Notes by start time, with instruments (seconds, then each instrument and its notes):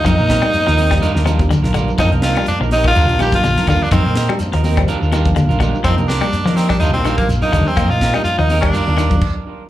0.04 fingered electric bass F2, clean electric guitar F3 C4 D#4 A#4, tenor saxophone D#4, kick, closed hi-hat, low conga, claves, shekere
0.18 fingered electric bass A#2, clean electric guitar D#4 A#4, shekere
0.28 clean electric guitar C4 D#4 A#4, kick, snare, closed hi-hat, shekere
0.42 tine electric piano F3 A#3 D#4, clean electric guitar G3, high conga, claves, shekere
0.53 closed hi-hat, shekere
0.67 fingered electric bass D#2, clean electric guitar F3 D#4 A#4, snare, high conga, shekere
0.77 clean electric guitar C4 D#4 A#4, open hi-hat, high conga, shekere
0.90 tine electric piano F3 A#3 D#4, clean electric guitar G3, kick, snare, claves, shekere
1.01 clean electric guitar G3 D4 F4 A#4, muted fingered electric bass stroke, closed hi-hat, shekere
1.14 fingered electric bass D#2, clean electric guitar D4 F4 A#4, snare, high conga, shekere
1.25 clean electric guitar F3 G3 D4 F4 A#4, closed hi-hat, high conga, claves, shekere
1.39 tine electric piano F3 A#3 D4, kick, closed hi-hat, high conga, shekere
1.51 fingered electric bass D2, clean electric guitar D3, closed hi-hat, low conga, shekere
1.63 fingered electric bass A#1, clean electric guitar D4 F4 A#4, snare, closed hi-hat, low conga, shekere
1.74 clean electric guitar D3 G3 F4 A#4, kick, closed hi-hat, claves, shekere
1.88 tine electric piano F3 A#3 D4, low conga, shekere
1.98 fingered electric bass F2, tine electric piano F3 A#3 D4, clean electric guitar F3 C4 D#4 A#4, tenor saxophone D#4, kick, closed hi-hat, low conga, claves, shekere
2.12 fingered electric bass C2, clean electric guitar D#4 A#4, closed hi-hat, high conga, shekere
2.22 clean electric guitar C4 D#4 A#4, tenor saxophone F4, snare, closed hi-hat, shekere
2.35 clean electric guitar G3, closed hi-hat, high conga, claves, shekere
2.46 tenor saxophone D4, closed hi-hat, shekere
2.60 fingered electric bass A#1, clean electric guitar F3 D#4 A#4, high conga, shekere
2.71 clean electric guitar C4 D#4 A#4, tenor saxophone D#4, open hi-hat, high conga, shekere
2.84 clean electric guitar D#3, tenor saxophone F4, kick, claves, shekere
2.95 fingered electric bass D#2, clean electric guitar G3 D4 F4 A#4, closed hi-hat, shekere
3.09 fingered electric bass A#1, clean electric guitar D4 F4, closed hi-hat, shekere
3.19 clean electric guitar D#3 G3 D4 F4 A#4, tine electric piano F3 A#3 D4, tenor saxophone G4, closed hi-hat, high conga, claves, shekere
3.32 tenor saxophone F4, kick, snare, closed hi-hat, low conga, shekere
3.44 fingered electric bass A#1, clean electric guitar D3, closed hi-hat, high conga, shekere
3.56 clean electric guitar D4 F4 A#4, snare, low conga, shekere
3.67 fingered electric bass D#2, clean electric guitar D3 G3 D4 F4 A#4, tine electric piano F3 A#3 D4, tenor saxophone F4, kick, closed hi-hat, claves, shekere
3.82 tenor saxophone D4, muted fingered electric bass stroke, shekere
3.91 fingered electric bass F2, clean electric guitar D#3 C4 D#4 A#4, tenor saxophone C4, kick, closed hi-hat, low conga, claves, shekere
4.06 fingered electric bass A#2, clean electric guitar D#4 A#4, shekere
4.16 clean electric guitar C4 D#4 A#4, snare, closed hi-hat, shekere
4.29 tine electric piano F3 A#3 D4, clean electric guitar G3, high conga, claves, shekere
4.39 closed hi-hat, shekere
4.52 fingered electric bass D#2, clean electric guitar F3 D#4 A#4, snare, shekere
4.64 clean electric guitar C4 D#4 A#4, open hi-hat, high conga, shekere
4.77 tine electric piano F3 A#3 C4, clean electric guitar G3, kick, closed hi-hat, claves, shekere
4.88 clean electric guitar G3 D4 F4 A#4, muted fingered electric bass stroke, closed hi-hat, shekere
5.01 fingered electric bass D#2, clean electric guitar D4 F4 A#4, shekere
5.12 clean electric guitar D#3 G3 D4 F4 A#4, tine electric piano G5, closed hi-hat, high conga, claves, shekere
5.24 tine electric piano F3 A#3 D4, kick, closed hi-hat, low conga, shekere
5.36 fingered electric bass D2, clean electric guitar D3, tine electric piano F5, closed hi-hat, high conga, shekere
5.49 fingered electric bass A#1, clean electric guitar D4 F4 A#4, closed hi-hat, low conga, shekere
5.60 clean electric guitar D3 G3 D4 F4 A#4, tine electric piano D#5, kick, closed hi-hat, high conga, claves, shekere
5.74 tine electric piano F3 A#3 D4, shekere
5.84 fingered electric bass F2, clean electric guitar F3 C4 D#4 A#4, tine electric piano F3 A#3 D4, tenor saxophone C4, kick, closed hi-hat, low conga, claves, shekere
5.98 fingered electric bass C2, clean electric guitar D#4 A#4, closed hi-hat, high conga, shekere
6.08 clean electric guitar C4 A#4, tenor saxophone D4, muted clean electric guitar stroke, snare, closed hi-hat, shekere
6.21 clean electric guitar G3, closed hi-hat, high conga, claves, shekere
6.33 closed hi-hat, shekere
6.45 fingered electric bass F3, clean electric guitar F3 D#4 A#4, snare, shekere
6.56 clean electric guitar C4 D#4 A#4, tenor saxophone C4, snare, open hi-hat, high conga, shekere
6.69 clean electric guitar G3, tenor saxophone D4, kick, claves, shekere
6.80 fingered electric bass D#2, clean electric guitar G3 D4 F4 A#4, tenor saxophone D#4, closed hi-hat, shekere
6.93 fingered electric bass A#1, tenor saxophone C4, clean electric guitar D4 F4 A#4, closed hi-hat, high conga, shekere
7.04 clean electric guitar D#3 G3 D4 F4 A#4, tine electric piano F3 A#3 D4, closed hi-hat, high conga, claves, shekere
7.17 tenor saxophone A#3, kick, closed hi-hat, low conga, shekere
7.29 fingered electric bass A#1, closed hi-hat, high conga, shekere
7.42 clean electric guitar D4 F4 A#4, tenor saxophone D#4, low conga, shekere
7.52 fingered electric bass D#2, clean electric guitar D3 G3 D4 A#4, tine electric piano F3 A#3 D4, kick, closed hi-hat, claves, shekere
7.67 tenor saxophone C4, shekere
7.76 fingered electric bass F2, clean electric guitar A#3 C4 D#4 A#4, kick, closed hi-hat, low conga, claves, shekere
7.90 fingered electric bass A#2, clean electric guitar D#4 A#4, tenor saxophone F4, shekere
8.01 clean electric guitar C4 D#4 A#4, kick, snare, closed hi-hat, shekere
8.13 tine electric piano F3 A#3 D4, clean electric guitar G3, tenor saxophone D#4, high conga, claves, shekere
8.24 tenor saxophone F4, closed hi-hat, shekere
8.38 fingered electric bass D#2, clean electric guitar F3 D#4 A#4, tenor saxophone D#4, shekere
8.49 clean electric guitar C4 D#4 A#4, open hi-hat, high conga, shekere
8.61 tine electric piano F3 A#3 D4, clean electric guitar G3, tenor saxophone D4, kick, closed hi-hat, claves, shekere
8.73 clean electric guitar G3 D4 F4 A#4, closed hi-hat, shekere
8.87 fingered electric bass D#2, clean electric guitar D4 F4 A#4, high conga, shekere
8.97 clean electric guitar D#3 G3 D4 F4 A#4, closed hi-hat, high conga, claves, shekere
9.10 tine electric piano F3 A#3 D4, kick, closed hi-hat, low conga, shekere
9.21 kick, crash